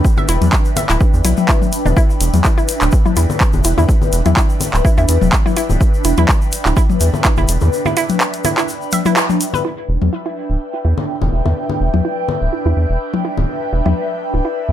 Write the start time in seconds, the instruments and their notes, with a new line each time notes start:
Already playing: analog synth pad D4 B4 E5 G5
0.05 kick, shaker
0.17 synth arpeggio sound E5, low conga, shaker
0.29 analog synth bass E1, synth arpeggio sound E4, closed hi-hat, shaker
0.41 analog synth bass E2, closed hi-hat, high tom, shaker
0.53 kick, clap, shaker
0.65 shaker
0.77 synth arpeggio sound E5, closed hi-hat, low conga, shaker
0.89 analog synth bass D1, synth arpeggio sound E4, clap, shaker
1.00 kick, shaker
1.14 analog synth bass E2, shaker
1.25 analog synth bass B1, synth arpeggio sound E4, closed hi-hat, high tom, shaker
1.37 high tom, shaker
1.48 synth arpeggio sound E4, kick, clap, shaker
1.62 high tom, shaker
1.73 closed hi-hat, shaker
1.86 analog synth bass E1, synth arpeggio sound D4, low conga, shaker
1.97 synth arpeggio sound E4, kick, shaker
2.10 shaker
2.21 analog synth bass E1, closed hi-hat, shaker
2.34 analog synth bass E2, closed hi-hat, high tom, shaker
2.44 synth arpeggio sound E4, kick, clap, shaker
2.58 synth arpeggio sound E4, shaker
2.69 closed hi-hat, shaker
2.81 analog synth bass D1, clap, shaker
2.92 kick, shaker
3.06 synth arpeggio sound E4, high tom, shaker
3.17 analog synth bass E2, synth arpeggio sound E4, closed hi-hat, shaker
3.30 low conga, shaker
3.41 kick, clap, shaker
3.53 analog synth bass E1, low conga, shaker
3.64 analog synth bass E1, synth arpeggio sound E4, closed hi-hat, shaker
3.78 analog synth bass E2, synth arpeggio sound E4, low conga, shaker
3.89 kick, shaker
4.02 low conga, shaker
4.13 analog synth bass E1, closed hi-hat, shaker
4.26 analog synth bass E2, synth arpeggio sound E4, closed hi-hat, high tom, shaker
4.37 synth arpeggio sound E4, kick, clap, shaker
4.50 shaker
4.61 closed hi-hat, low conga, shaker
4.74 analog synth bass D1, clap, shaker
4.85 synth arpeggio sound E4, kick, shaker
4.98 analog synth bass E2, synth arpeggio sound E4, shaker
5.09 analog synth bass E2, closed hi-hat, shaker
5.21 analog synth bass E1, high tom, shaker
5.33 kick, clap, shaker
5.46 synth arpeggio sound E4, high tom, shaker
5.57 synth arpeggio sound E4, closed hi-hat, shaker
5.70 analog synth bass D1, low conga, shaker
5.81 kick, shaker
5.94 shaker
6.05 analog synth bass E1, synth arpeggio sound E4, closed hi-hat, shaker
6.17 analog synth bass E2, synth arpeggio sound E4, closed hi-hat, high tom, shaker
6.29 kick, clap, shaker
6.41 shaker
6.52 closed hi-hat, shaker
6.66 analog synth bass D1, synth arpeggio sound E4, clap, shaker
6.77 synth arpeggio sound E4, kick, shaker
6.90 high tom, shaker
7.01 analog synth bass E2, closed hi-hat, shaker
7.14 low conga, shaker
7.24 synth arpeggio sound E4, kick, clap, shaker
7.37 analog synth bass E1, synth arpeggio sound E4, low conga, shaker
7.48 analog synth bass E1, closed hi-hat, shaker
7.61 analog synth bass E2, low conga, shaker
7.73 shaker
7.86 synth arpeggio sound E4, low conga, shaker
7.97 synth arpeggio sound E4, closed hi-hat, shaker
8.09 closed hi-hat, high tom, shaker
8.20 clap, shaker
8.34 closed hi-hat, shaker
8.45 synth arpeggio sound E4, closed hi-hat, low conga, shaker
8.58 synth arpeggio sound E4, clap, shaker
8.69 shaker
8.82 shaker
8.92 synth arpeggio sound E5, closed hi-hat, high tom, shaker
9.05 synth arpeggio sound E4, high tom, shaker
9.16 synth arpeggio sound E4, clap, shaker
9.30 high tom, shaker
9.41 closed hi-hat, shaker
9.54 synth arpeggio sound B4, low conga, shaker
9.65 analog synth pad D4, synth arpeggio sound E4
9.81 analog synth pad E5
9.89 analog synth bass E1
9.94 analog synth pad B4 G5
10.02 analog synth bass E2, high tom
10.13 synth arpeggio sound E4
10.26 synth arpeggio sound E4
10.50 analog synth bass D1
10.74 synth arpeggio sound E4
10.85 analog synth bass E2, synth arpeggio sound E4
10.98 low conga
11.22 analog synth bass E1, low conga
11.33 analog synth bass E1, synth arpeggio sound E4
11.46 analog synth bass E2, synth arpeggio sound E4, low conga
11.70 low conga
11.81 analog synth bass E1
11.94 analog synth bass E2, synth arpeggio sound E4, high tom
12.05 synth arpeggio sound E4
12.29 low conga
12.42 analog synth bass D1
12.53 synth arpeggio sound E4
12.66 analog synth bass E2, synth arpeggio sound E4
12.77 analog synth bass E2
12.90 analog synth bass E1
13.14 synth arpeggio sound E4, high tom
13.25 synth arpeggio sound E4
13.38 analog synth bass D1, low conga
13.73 analog synth bass E1, synth arpeggio sound E4
13.86 analog synth bass E2, synth arpeggio sound E4, high tom
14.34 analog synth bass D1, synth arpeggio sound E4
14.45 synth arpeggio sound E4
14.69 analog synth bass E2